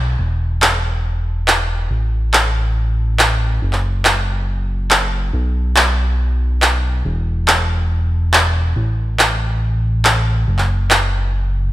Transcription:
Already playing: analog synth bass B1
0.19 analog synth bass E1
0.62 clap
1.48 clap
1.91 analog synth bass A1
2.34 clap
3.19 clap
3.62 analog synth bass F#1
3.73 clap
4.05 clap
4.91 clap
5.33 analog synth bass B1
5.76 clap
6.62 clap
7.05 analog synth bass E1
7.48 clap
8.34 clap
8.76 analog synth bass A1
9.19 clap
10.05 clap
10.48 analog synth bass F#1
10.58 clap
10.91 clap

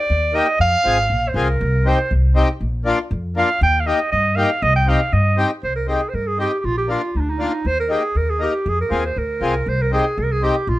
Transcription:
Already playing: clarinet D5
0.10 upright bass D#2
0.33 accordion A#3 D#4 G4, clarinet D#5
0.59 upright bass F2, clarinet F5
0.84 upright bass G#1, accordion C4 F4 G#4
1.10 upright bass A#1
1.29 clarinet C5
1.34 upright bass C2, accordion C4 F4 G#4, clarinet A#4
1.61 upright bass C2
1.85 accordion C4 D#4 G4
1.89 clarinet C5
2.11 upright bass C2
2.35 accordion C4 D#4 G4
2.61 upright bass A#1
2.85 accordion A#3 D4 F4
3.11 upright bass F2
3.36 accordion A#3 D4 F4, clarinet F5
3.61 upright bass D#2, clarinet G5
3.80 clarinet F5
3.86 accordion A#3 D#4 G4, clarinet D#5
4.12 upright bass G2, clarinet D#5
4.36 accordion A#3 D#4 G4, clarinet F5
4.62 upright bass C2, clarinet D#5
4.76 clarinet G5
4.87 accordion C4 D#4 G4, clarinet F5
5.13 upright bass G2, clarinet D#5
5.37 accordion C4 D#4 G4
5.63 upright bass C2, clarinet C5
5.76 clarinet A#4
5.87 accordion C4 D#4 G4, clarinet G#4
6.10 clarinet C5
6.14 upright bass G2, clarinet A#4
6.28 clarinet G#4
6.38 accordion C4 D#4 G4, clarinet G4
6.60 upright bass A#1, clarinet G4
6.66 clarinet F4
6.78 clarinet G4
6.88 accordion A#3 D4 F4, clarinet F4
7.15 upright bass D2, clarinet D#4
7.21 clarinet D4
7.30 clarinet D#4
7.39 accordion A#3 D4 F4
7.65 upright bass D#2, clarinet C5
7.80 clarinet A#4
7.89 accordion A#3 D#4 G4, clarinet G#4
8.15 upright bass D#2, clarinet A#4
8.30 clarinet G#4
8.39 accordion A#3 D#4 A#4, clarinet G4
8.66 upright bass F2, clarinet G#4
8.81 clarinet A#4
8.90 upright bass D#2, accordion C4 F4 G#4
9.06 clarinet C5
9.16 upright bass D2, clarinet A#4
9.41 upright bass C2, accordion C4 F4 G#4
9.66 upright bass C2, clarinet C5
9.82 clarinet A#4
9.91 accordion C4 D#4 G4, clarinet G#4
10.18 upright bass C2, clarinet A#4
10.32 clarinet G#4
10.42 accordion C4 D#4 G4, clarinet G4
10.67 upright bass A#1, clarinet F4

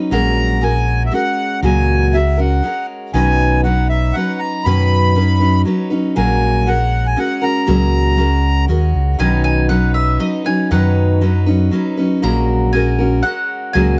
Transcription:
Already playing: steel-string acoustic guitar F#3 C#4 D#4 B4
0.11 fingered electric bass A#1, steel-string acoustic guitar A#2 F#3 G#3 C#4 F#4 A#4, accordion A#5
0.61 steel-string acoustic guitar G#3 C#4 F#4 A#4, accordion G#5
1.06 accordion E5
1.11 steel-string acoustic guitar G#3 C#4 F#4 A#4, accordion F#5
1.63 fingered electric bass C#2, steel-string acoustic guitar A#2 F#3 G#3 C#4 F#4 A#4, accordion G#5
2.13 steel-string acoustic guitar G#3 C#4 F#4 A#4, accordion E5
2.37 steel-string acoustic guitar G#3 C#4 F#4 A#4, accordion F#5
2.63 steel-string acoustic guitar G#3 C#4 F#4 A#4
3.14 fingered electric bass B1, steel-string acoustic guitar B2 D#3 F#3 C#4 D#4 B4, accordion G#5
3.64 steel-string acoustic guitar F#3 C#4 D#4 B4, accordion F#5
3.89 accordion E5
4.13 steel-string acoustic guitar F#3 C#4, accordion F#5
4.17 steel-string acoustic guitar D#4 B4
4.39 accordion A#5
4.64 fingered electric bass F#2, steel-string acoustic guitar B2 D#3 F#3 C#4 D#4 B4, accordion B5
5.15 steel-string acoustic guitar F#3 C#4 D#4 B4
5.40 steel-string acoustic guitar F#3 C#4 D#4 B4
5.65 steel-string acoustic guitar F#3 C#4 D#4 B4
5.90 steel-string acoustic guitar F#3 C#4 D#4 B4
6.16 fingered electric bass A#1, steel-string acoustic guitar A#2 F#3 G#3 C#4 F#4 A#4, accordion G#5
6.66 steel-string acoustic guitar G#3 C#4 F#4 A#4, accordion F#5
7.06 accordion G#5
7.16 steel-string acoustic guitar G#3 C#4 F#4 A#4, accordion F#5
7.42 steel-string acoustic guitar G#3 C#4 F#4 A#4, accordion A#5
7.67 fingered electric bass C#2, steel-string acoustic guitar A#2 F#3 G#3 C#4 F#4 A#4
8.17 steel-string acoustic guitar G#3 C#4 F#4 A#4
8.68 fingered electric bass D#2, steel-string acoustic guitar G#3 C#4 F#4 A#4
8.94 fingered electric bass C#2
9.19 fingered electric bass B1, steel-string acoustic guitar B2 D#3 F#3 C#4 D#4 B4, mandolin G#5
9.44 mandolin G#5
9.69 steel-string acoustic guitar F#3 C#4 D#4 B4, mandolin F#5
9.94 mandolin E5
10.19 steel-string acoustic guitar F#3 C#4 D#4 B4, mandolin D#5
10.44 steel-string acoustic guitar F#3 C#4 D#4 B4, mandolin G#5
10.71 fingered electric bass F#2, steel-string acoustic guitar B2 D#3 F#3 C#4 D#4 B4, mandolin F#5
11.21 steel-string acoustic guitar F#3 C#4 D#4 B4
11.46 steel-string acoustic guitar F#3 C#4 D#4 B4
11.71 steel-string acoustic guitar F#3 C#4 D#4 B4
11.97 steel-string acoustic guitar F#3 C#4 D#4 B4
12.22 fingered electric bass A#1, steel-string acoustic guitar A#2 F#3 G#3 C#4 F#4 A#4, mandolin A#5
12.73 steel-string acoustic guitar G#3 C#4 F#4 A#4, mandolin G#5
12.99 steel-string acoustic guitar G#3 C#4 F#4 A#4
13.23 steel-string acoustic guitar G#3 C#4 F#4 A#4, mandolin F#5
13.73 fingered electric bass C#2, steel-string acoustic guitar A#2 F#3 G#3 C#4 F#4 A#4, mandolin G#5

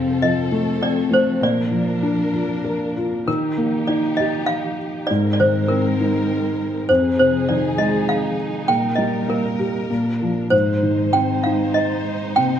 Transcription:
Already playing: felt piano F2 C3, string section F3 C4 A4, toy piano F5
0.22 felt piano F3, toy piano D#5
0.52 felt piano A3
0.82 felt piano C4, toy piano D5
1.11 felt piano A3, toy piano C5
1.41 felt piano A#2, string section D4 A#4, toy piano D5
1.72 felt piano F3
2.03 felt piano D4
2.33 felt piano F4
2.64 felt piano A#4
2.97 felt piano F4
3.28 felt piano D#3, string section F3 D#4 G4, toy piano A#4
3.58 felt piano A#3
3.87 felt piano D#4, toy piano D5
4.17 felt piano G4, toy piano D#5
4.46 toy piano F5
5.07 felt piano G#2, toy piano D5
5.11 string section G#3 C4 A#4
5.33 toy piano D5
5.40 felt piano D#3, toy piano C5
5.68 felt piano C4, toy piano A#4
6.00 felt piano D#4
6.89 felt piano F2, string section F3 D#4 G#4, toy piano C5
7.19 felt piano C3, toy piano C5
7.49 felt piano D#3, toy piano D5
7.78 felt piano G#3, toy piano D#5
8.09 toy piano F5
8.68 felt piano A#2, string section A#2 G3 A#4, toy piano G5
8.95 felt piano G3, toy piano D#5
9.28 felt piano A#3, toy piano A#4
9.59 felt piano G4
9.90 felt piano A#2, string section F3 D4
10.22 felt piano F3
10.50 felt piano G#2, string section G#3 D#4 C5, toy piano C5
10.83 felt piano D#3
11.13 felt piano C4, toy piano G5
11.44 felt piano D#4, toy piano F5
11.74 toy piano D#5
12.36 felt piano C3, string section A#3, toy piano G5

